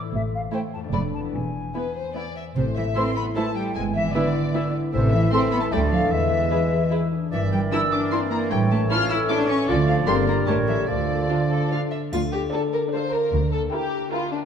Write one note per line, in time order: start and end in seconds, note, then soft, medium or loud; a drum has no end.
0.00 0.86 A2 soft
0.00 0.78 A3 soft
0.00 0.13 D5 soft
0.05 0.90 E4 soft
0.10 0.45 A1 medium
0.10 0.45 A2 medium
0.10 0.92 C5 soft
0.15 0.21 E5 medium
0.34 0.40 F5 medium
0.52 0.60 A3 soft
0.52 0.60 E4 soft
0.52 0.60 C5 soft
0.52 0.59 G5 medium
0.73 1.26 F2 soft
0.73 0.79 A5 medium
0.79 1.29 A3 soft
0.84 1.31 D4 soft
0.88 1.25 F1 medium
0.88 1.33 D5 soft
0.92 1.25 F2 medium
0.92 1.01 A3 soft
0.92 1.00 D4 soft
0.92 1.01 D5 soft
0.92 0.99 B5 medium
1.14 2.49 E2 soft
1.14 1.20 A5 medium
1.20 2.51 B3 soft
1.25 3.55 E4 soft
1.29 1.66 E1 soft
1.29 2.56 B4 soft
1.33 1.66 E2 medium
1.33 2.34 G#5 medium
1.74 1.83 B3 soft
1.74 1.82 E4 soft
1.74 1.94 B4 soft
1.96 2.16 C5 soft
2.15 2.23 B3 soft
2.15 2.24 E4 soft
2.15 2.36 D5 soft
2.37 2.45 E5 soft
2.55 2.90 A1 medium
2.55 3.77 A2 soft
2.55 2.65 C3 medium
2.55 3.72 A3 soft
2.55 4.90 E4 medium
2.55 2.74 C5 medium
2.55 2.63 C5 medium
2.76 2.85 E3 medium
2.76 3.15 C5 soft
2.76 2.96 E5 medium
2.76 2.83 E5 medium
2.96 3.11 E3 soft
2.96 3.04 A3 soft
2.96 3.16 C4 medium
2.96 3.04 E4 soft
2.96 3.11 A4 soft
2.96 3.04 C5 soft
2.96 3.10 E5 soft
2.96 3.16 C6 medium
2.96 3.02 C6 medium
3.16 3.24 B3 medium
3.16 3.77 C5 soft
3.16 3.22 B5 medium
3.16 3.24 B5 medium
3.35 3.50 E3 soft
3.35 3.44 A3 soft
3.35 3.77 A3 soft
3.35 3.45 A3 medium
3.35 3.44 E4 soft
3.35 3.50 A4 soft
3.35 3.44 C5 soft
3.35 3.50 E5 soft
3.35 3.56 A5 medium
3.35 3.55 A5 medium
3.55 3.75 G3 medium
3.55 4.73 E4 soft
3.55 3.74 G5 medium
3.55 3.64 G5 soft
3.75 4.08 G#1 medium
3.75 4.95 G#2 soft
3.75 3.83 G#3 medium
3.75 4.93 B3 soft
3.75 3.95 G#5 medium
3.75 3.83 G#5 medium
3.95 4.15 E3 medium
3.95 4.34 B4 soft
3.95 4.14 E5 medium
3.95 4.02 E5 medium
4.14 4.73 D3 soft
4.14 4.29 E3 soft
4.14 4.23 B3 soft
4.14 4.53 B3 soft
4.14 4.23 E4 soft
4.14 4.29 B4 soft
4.14 4.22 B4 soft
4.14 4.74 D5 medium
4.14 4.73 D5 medium
4.14 4.30 E5 soft
4.35 4.95 B4 soft
4.54 4.68 E3 soft
4.54 4.95 B3 soft
4.54 4.62 B3 soft
4.54 4.62 E4 soft
4.54 4.68 B4 soft
4.54 4.63 B4 soft
4.54 4.68 E5 soft
4.74 5.74 E4 soft
4.93 5.26 A1 medium
4.93 5.74 A2 medium
4.93 5.12 C3 medium
4.93 5.30 E3 medium
4.93 5.30 A3 medium
4.93 5.30 E4 medium
4.93 5.30 A4 medium
4.93 5.12 C5 medium
4.93 5.00 C5 medium
4.93 5.30 E5 medium
5.12 5.33 E3 medium
5.12 5.51 C5 soft
5.12 5.32 E5 medium
5.12 5.20 E5 medium
5.32 5.74 E3 medium
5.32 5.40 A3 soft
5.32 6.14 A3 soft
5.32 5.72 A3 medium
5.32 5.52 C4 medium
5.32 5.71 E4 medium
5.32 5.40 A4 medium
5.32 5.71 A4 medium
5.32 5.42 C5 medium
5.32 5.74 E5 medium
5.32 5.40 C6 medium
5.32 5.39 C6 medium
5.52 5.62 B3 medium
5.52 5.74 C5 soft
5.52 5.56 B5 medium
5.52 5.62 B5 medium
5.61 5.67 A3 medium
5.61 5.65 A5 medium
5.61 5.68 A5 medium
5.72 6.05 D2 medium
5.72 6.14 D3 medium
5.72 5.92 G3 medium
5.72 5.80 A3 medium
5.72 6.13 A3 medium
5.72 6.12 A3 soft
5.72 6.12 D4 medium
5.72 5.80 A4 soft
5.72 6.13 A4 medium
5.72 5.80 D5 soft
5.72 6.13 D5 medium
5.72 5.80 G5 medium
5.72 5.79 G5 medium
5.91 6.12 F3 medium
5.91 6.14 A4 soft
5.91 6.14 D5 soft
5.91 6.11 F5 medium
5.91 6.14 F5 medium
6.11 6.45 E2 medium
6.11 6.90 E3 soft
6.11 7.34 E3 soft
6.11 7.12 G#3 soft
6.11 6.48 G#3 soft
6.11 6.48 E4 soft
6.11 7.12 B4 soft
6.11 6.90 E5 medium
6.11 7.12 E5 medium
6.11 6.92 E5 medium
6.32 6.71 B4 soft
6.51 6.61 E3 medium
6.51 6.59 E4 soft
6.51 6.91 E4 soft
6.51 6.59 G#4 soft
6.51 6.60 B4 soft
6.72 6.81 G#3 soft
6.72 7.34 B4 soft
6.91 6.99 E4 soft
6.91 8.31 E4 soft
6.91 7.12 E4 medium
6.91 6.99 G#4 soft
6.91 6.99 B4 soft
7.12 7.32 D4 medium
7.12 7.34 G#4 soft
7.31 7.65 G1 medium
7.31 8.53 G2 soft
7.31 9.65 E3 soft
7.31 7.41 E3 medium
7.31 8.53 A#4 medium
7.31 8.47 D5 soft
7.31 7.51 E5 medium
7.31 7.39 E5 medium
7.52 7.60 G3 medium
7.52 7.91 A#4 soft
7.52 7.60 G5 soft
7.52 7.59 G5 medium
7.72 7.87 A#3 soft
7.72 7.80 D4 soft
7.72 7.87 D4 soft
7.72 8.11 D4 soft
7.72 7.80 E4 soft
7.72 7.80 E4 medium
7.72 7.81 A#4 soft
7.72 7.80 E6 medium
7.72 7.94 E6 medium
7.92 8.12 D4 medium
7.92 8.53 A#4 soft
7.92 8.00 D6 medium
7.92 8.11 D6 medium
8.12 8.26 A#3 soft
8.12 8.32 C4 medium
8.12 8.20 D4 soft
8.12 8.53 D4 soft
8.12 8.27 D4 soft
8.12 8.20 E4 soft
8.12 8.21 A#4 soft
8.12 8.20 C6 medium
8.12 8.18 C6 medium
8.31 8.51 A#3 medium
8.31 9.48 E4 soft
8.31 8.39 A#5 medium
8.31 8.37 A#5 medium
8.51 8.84 A1 medium
8.51 9.70 A2 soft
8.51 8.71 G3 medium
8.51 10.08 A4 medium
8.51 9.66 C#5 medium
8.51 8.59 G5 medium
8.51 8.73 G5 medium
8.71 8.79 A3 medium
8.71 9.09 A4 soft
8.71 8.79 A5 medium
8.71 8.90 A5 medium
8.90 9.05 A3 medium
8.90 8.98 C#4 medium
8.90 9.29 C#4 soft
8.90 9.05 C#4 soft
8.90 8.98 E4 medium
8.90 9.10 F4 medium
8.90 8.99 A4 soft
8.90 9.12 F6 medium
8.90 9.10 F6 medium
9.10 9.18 E4 medium
9.10 9.87 A4 medium
9.10 9.18 E6 medium
9.10 9.29 E6 medium
9.29 9.43 A3 soft
9.29 9.37 C#4 medium
9.29 9.43 C#4 soft
9.29 9.70 C#4 soft
9.29 9.49 D4 medium
9.29 9.37 E4 soft
9.29 9.38 A4 medium
9.29 9.37 D6 medium
9.29 9.36 D6 medium
9.49 9.69 C#4 medium
9.49 9.68 C#6 medium
9.49 9.55 C#6 medium
9.68 10.01 D2 medium
9.68 10.09 D3 medium
9.68 9.88 D3 medium
9.68 10.09 F3 soft
9.68 10.05 A3 medium
9.68 9.76 D4 medium
9.68 9.76 F4 soft
9.68 10.05 F4 medium
9.68 9.77 A4 medium
9.68 9.87 D5 medium
9.68 9.74 D5 medium
9.68 10.49 D5 medium
9.87 10.07 F3 medium
9.87 10.09 F4 soft
9.87 10.09 A4 soft
9.87 9.95 F5 medium
9.87 9.94 F5 medium
10.07 10.41 G1 medium
10.07 10.49 G2 medium
10.07 10.90 G3 medium
10.07 10.45 A#3 medium
10.07 10.28 C4 medium
10.07 10.15 D4 medium
10.07 10.45 G4 medium
10.07 10.15 G4 medium
10.07 10.87 A#4 medium
10.07 10.16 A#4 medium
10.07 10.15 C6 medium
10.07 10.13 C6 medium
10.27 10.36 A#3 medium
10.27 10.67 G4 soft
10.27 10.67 A#4 soft
10.27 10.47 A#5 medium
10.27 10.36 A#5 medium
10.46 10.82 A1 medium
10.46 10.90 A2 medium
10.46 10.55 A3 medium
10.46 10.87 A#3 soft
10.46 10.55 C#4 soft
10.46 10.87 G4 soft
10.46 10.55 G4 soft
10.46 10.56 A#4 soft
10.46 10.90 C#5 soft
10.46 10.55 A5 medium
10.46 10.53 A5 medium
10.67 10.76 E3 medium
10.67 10.90 G4 soft
10.67 10.90 A#4 soft
10.67 10.73 E5 medium
10.67 10.88 E5 medium
10.88 11.23 D2 medium
10.88 11.70 D3 soft
10.88 12.13 D3 soft
10.88 11.93 F3 soft
10.88 11.93 A3 soft
10.88 11.93 F4 soft
10.88 11.90 A4 soft
10.88 11.70 D5 medium
10.88 11.93 D5 soft
11.10 11.50 A4 soft
11.30 11.38 D4 soft
11.30 11.38 F4 soft
11.51 11.71 A4 soft
11.51 12.52 A4 soft
11.72 11.80 D4 soft
11.72 12.33 D4 soft
11.72 11.80 F4 soft
11.72 11.80 F5 medium
11.92 13.35 F4 soft
11.92 12.00 E5 soft
12.13 12.45 D2 medium
12.13 13.32 D3 soft
12.13 12.21 F4 medium
12.13 triangle soft
12.34 14.45 D4 soft
12.34 12.42 G4 medium
12.53 12.83 D4 medium
12.53 12.83 A4 medium
12.53 13.35 A4 soft
12.53 12.62 A4 medium
12.53 12.83 D5 medium
12.73 12.81 A#4 medium
12.73 13.13 D5 soft
12.93 13.23 D4 soft
12.93 13.23 A4 medium
12.93 13.13 C5 medium
12.93 13.23 D5 medium
12.93 13.35 F5 soft
13.13 13.53 A#4 medium
13.13 14.45 D5 soft
13.33 13.65 D2 medium
13.33 14.45 D3 soft
13.53 14.45 A#3 soft
13.53 13.61 A4 medium
13.72 14.03 E4 medium
13.72 14.12 G4 medium
13.72 14.45 G4 soft
13.72 14.03 A#4 medium
13.72 14.02 G5 medium
13.93 14.31 A#4 soft
14.12 14.42 E4 medium
14.12 14.31 F4 medium
14.12 14.42 A#4 medium
14.12 14.45 E5 soft
14.12 14.42 G5 medium
14.32 14.40 D4 medium
14.32 14.45 A#4 soft